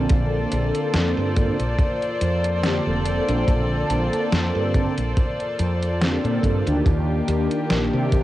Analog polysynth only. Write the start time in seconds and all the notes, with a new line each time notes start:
Already playing: D3 A#3 C4 A4
1.36 D3 A#3 C4 A4
2.63 D3 A#3 C4 G4
2.85 D3 A#3 C4 A4
3.27 D3 A#3 C4 A4
4.74 D3 A#3 C4 A4
6.00 D3 A#3 C4 G4
6.24 D3 A#3 C4 A4
6.65 D#3 A#3 D4 G4
8.11 D#3 A#3 D4 G4